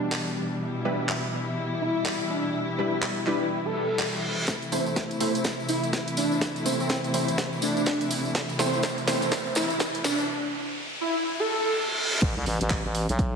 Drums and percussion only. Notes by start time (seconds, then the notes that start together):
0.12 clap
1.09 clap
2.06 clap
3.02 clap
3.27 clap
3.99 clap
4.48 kick, snare, closed hi-hat, tambourine
4.62 closed hi-hat, tambourine
4.72 open hi-hat, tambourine
4.86 tambourine
4.96 kick, snare, closed hi-hat, tambourine
5.11 closed hi-hat, tambourine
5.20 open hi-hat, tambourine
5.35 closed hi-hat, tambourine
5.44 kick, snare, closed hi-hat, tambourine
5.60 tambourine
5.68 open hi-hat, tambourine
5.83 closed hi-hat, tambourine
5.93 kick, snare, closed hi-hat, tambourine
6.08 closed hi-hat, tambourine
6.17 open hi-hat, tambourine
6.32 tambourine
6.41 kick, snare, closed hi-hat, tambourine
6.56 closed hi-hat, tambourine
6.66 open hi-hat, tambourine
6.80 tambourine
6.89 kick, snare, closed hi-hat, tambourine
7.04 closed hi-hat, tambourine
7.14 open hi-hat, tambourine
7.28 closed hi-hat, tambourine
7.38 kick, snare, closed hi-hat, tambourine
7.53 tambourine
7.62 open hi-hat, tambourine
7.77 closed hi-hat, tambourine
7.86 kick, snare, closed hi-hat, tambourine
8.01 closed hi-hat, tambourine
8.11 open hi-hat, tambourine
8.25 tambourine
8.35 kick, snare, closed hi-hat, tambourine
8.49 closed hi-hat, tambourine
8.59 snare, open hi-hat, tambourine
8.74 tambourine
8.83 kick, snare, closed hi-hat, tambourine
8.98 closed hi-hat, tambourine
9.07 snare, open hi-hat, tambourine
9.22 closed hi-hat, tambourine
9.31 kick, snare, closed hi-hat, tambourine
9.46 tambourine
9.55 snare, open hi-hat, tambourine
9.70 closed hi-hat, tambourine
9.79 kick, snare, closed hi-hat, tambourine
9.94 closed hi-hat, tambourine
10.04 snare, open hi-hat, tambourine
10.18 tambourine
12.22 kick, closed hi-hat, crash
12.46 open hi-hat
12.61 closed hi-hat
12.70 kick, clap, closed hi-hat
12.95 open hi-hat
13.09 closed hi-hat
13.19 kick, closed hi-hat